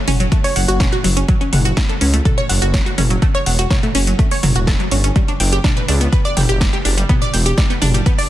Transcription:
0.08 detuned saw bass F#1, synth arpeggio sound C#4, open hi-hat, mid tom
0.20 synth arpeggio sound F#3, closed hi-hat
0.32 synth arpeggio sound A3, kick, closed hi-hat
0.44 synth arpeggio sound C#5, open hi-hat
0.56 detuned saw bass F#1, synth arpeggio sound F#5, open hi-hat
0.68 detuned saw bass F#1, synth arpeggio sound F#4, closed hi-hat
0.80 synth arpeggio sound C#4, kick, snare, closed hi-hat, mid tom
0.92 synth arpeggio sound F#4, closed hi-hat
1.04 detuned saw bass F#1, synth arpeggio sound F#3, open hi-hat
1.17 synth arpeggio sound C#4, closed hi-hat
1.28 synth arpeggio sound F#3, kick, closed hi-hat
1.41 synth arpeggio sound C#4, closed hi-hat
1.53 detuned saw bass F#1, synth arpeggio sound F#5, open hi-hat, mid tom
1.65 synth arpeggio sound F#4, closed hi-hat
1.77 synth arpeggio sound C#4, kick, snare, closed hi-hat
1.89 synth arpeggio sound A4, closed hi-hat
2.01 detuned saw bass C#2, synth arpeggio sound C#4, open hi-hat
2.14 synth arpeggio sound A3, closed hi-hat
2.25 synth arpeggio sound A4, kick, closed hi-hat, mid tom
2.38 synth arpeggio sound C#5, closed hi-hat
2.49 detuned saw bass F#1, synth arpeggio sound F#5, open hi-hat
2.62 detuned saw bass F#1, synth arpeggio sound F#4, closed hi-hat
2.74 synth arpeggio sound C#5, kick, snare, closed hi-hat
2.86 synth arpeggio sound F#4, closed hi-hat
2.98 detuned saw bass F#1, synth arpeggio sound C#4, open hi-hat, mid tom
3.10 synth arpeggio sound F#3, closed hi-hat
3.22 synth arpeggio sound A3, kick, closed hi-hat
3.35 synth arpeggio sound C#5, closed hi-hat
3.46 detuned saw bass E1, synth arpeggio sound F#5, open hi-hat
3.59 synth arpeggio sound F#4, closed hi-hat
3.71 synth arpeggio sound C#5, kick, snare, closed hi-hat, mid tom
3.83 synth arpeggio sound A3, closed hi-hat
3.95 detuned saw bass F#1, synth arpeggio sound C#4, open hi-hat
4.07 synth arpeggio sound F#3, closed hi-hat
4.19 synth arpeggio sound A3, kick, closed hi-hat
4.31 synth arpeggio sound C#5, open hi-hat
4.43 detuned saw bass F#1, synth arpeggio sound F#3, open hi-hat, mid tom
4.56 detuned saw bass E1, synth arpeggio sound F#4, closed hi-hat
4.67 synth arpeggio sound A4, kick, snare, closed hi-hat
4.80 synth arpeggio sound F#3, closed hi-hat
4.91 detuned saw bass G1, synth arpeggio sound C#4, open hi-hat
5.04 synth arpeggio sound C#4, closed hi-hat
5.16 synth arpeggio sound G3, kick, closed hi-hat
5.28 synth arpeggio sound D4, closed hi-hat
5.40 detuned saw bass F#1, synth arpeggio sound G5, open hi-hat
5.53 synth arpeggio sound G4, closed hi-hat
5.64 synth arpeggio sound D4, kick, snare, closed hi-hat, mid tom
5.77 synth arpeggio sound B4, closed hi-hat
5.88 detuned saw bass C#2, synth arpeggio sound D4, open hi-hat
6.01 synth arpeggio sound B3, closed hi-hat
6.13 synth arpeggio sound B4, kick, closed hi-hat
6.25 synth arpeggio sound D5, closed hi-hat
6.37 detuned saw bass F#1, synth arpeggio sound G5, open hi-hat, mid tom
6.49 detuned saw bass F#1, synth arpeggio sound G4, closed hi-hat
6.61 synth arpeggio sound D5, kick, snare, closed hi-hat
6.73 synth arpeggio sound G4, closed hi-hat
6.85 detuned saw bass F#1, synth arpeggio sound D4, open hi-hat
6.98 synth arpeggio sound G3, closed hi-hat
7.09 synth arpeggio sound B3, kick, closed hi-hat, mid tom
7.22 synth arpeggio sound D5, closed hi-hat
7.33 detuned saw bass E1, synth arpeggio sound G5, open hi-hat
7.46 synth arpeggio sound G4, closed hi-hat
7.58 synth arpeggio sound D5, kick, snare, closed hi-hat
7.70 synth arpeggio sound B3, closed hi-hat
7.82 detuned saw bass F#1, synth arpeggio sound D4, open hi-hat, mid tom
7.94 synth arpeggio sound G3, closed hi-hat
8.06 synth arpeggio sound B3, kick, closed hi-hat
8.18 synth arpeggio sound D5, open hi-hat

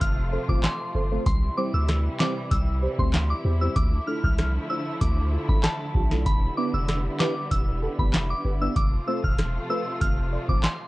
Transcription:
Already playing: string section C3 F3 A3 F4
0.01 sub bass F1, synth bell F6, kick, closed hi-hat
0.32 synth stab A4 C5
0.49 sub bass E1, synth stab A3 C4 F4 A4 C5, synth bell D6, kick
0.64 synth bell C6, snare, clap, closed hi-hat
0.95 sub bass G1, synth stab A4 C5
1.11 synth stab A3 C4 F4 A4 C5
1.26 sub bass C2, string section C3 E3 G3 E4, synth bell C6, kick, closed hi-hat
1.57 synth stab G3 C4 E4 G4 C5, synth bell D6
1.74 sub bass D2, synth bell E6
1.89 cross-stick, snare, closed hi-hat
2.20 synth stab G3 C4 E4 G4 C5, synth bell D6, snare, clap
2.51 sub bass C2, synth bell E6, kick, closed hi-hat
2.82 synth stab G4 C5
2.99 sub bass D2, synth stab G3 C4 E4 G4 C5, synth bell C6, kick
3.14 snare, clap, closed hi-hat
3.30 synth bell D6
3.45 sub bass E2, synth stab G4 C5
3.61 synth stab G3 C4 E4 G4 C5, synth bell E6
3.76 sub bass D2, string section D3 F3 A3, synth bell D6, kick, closed hi-hat
4.07 synth stab A3 D4 E4 F4 A4, synth bell F6
4.24 sub bass C2, synth bell F6, kick
4.38 cross-stick, snare, closed hi-hat
4.70 synth stab A3 D4 E4 F4 C5, synth bell E6
5.01 sub bass D2, synth bell D6, kick, closed hi-hat
5.32 synth stab F4 A4
5.49 sub bass A1, synth stab A3 D4 E4 F4 A4, synth bell B5, kick
5.64 synth bell A5, cross-stick, snare, clap, closed hi-hat
5.95 sub bass B1, synth stab F4 G4, kick
6.11 synth stab A3 D4 E4 F4 A4, snare
6.26 sub bass E1, string section G3 B3, synth bell B5, kick, closed hi-hat
6.57 synth stab B3 D4 E4 G4 B4, synth bell D6
6.74 sub bass F1, synth bell E6
6.88 cross-stick, snare, closed hi-hat
7.20 synth stab B3 D4 E4 G4 B4, synth bell D6, snare, clap
7.51 sub bass E1, synth bell E6, kick, closed hi-hat
7.82 synth stab G4 A4
7.99 sub bass F1, synth stab B3 D4 E4 G4 A4, synth bell B5, kick
8.14 snare, clap, closed hi-hat
8.30 synth bell D6
8.45 sub bass G1, synth stab G4 B4
8.61 synth stab B3 D4 E4 G4 D5, synth bell E6
8.76 sub bass F1, string section C3 F3 A3 F4, synth bell D6, kick, closed hi-hat
9.07 synth stab A3 C4 F4 A4 C5, synth bell E6
9.24 sub bass E1, synth bell F6, kick
9.38 cross-stick, snare, closed hi-hat
9.70 synth stab A3 C4 F4 A4 B4, synth bell E6
10.01 sub bass F1, synth bell F6, kick, closed hi-hat
10.32 synth stab A4 D5
10.49 sub bass E1, synth stab A3 C4 F4 A4 C5, synth bell D6, kick
10.64 synth bell C6, snare, clap, closed hi-hat

